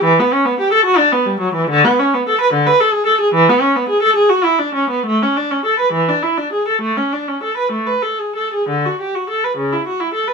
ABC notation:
X:1
M:6/8
L:1/16
Q:3/8=70
K:Edor
V:1 name="Viola"
E, B, C B, G A F D B, G, F, E, | [K:A] D, B, C B, A B D, B A G A G | E, B, C B, G A G F E D C B, | A, C D C A B E, D E D G A |
A, C D C A B A, B A G A G | [K:D] D, F G F A B C, E F E A B |]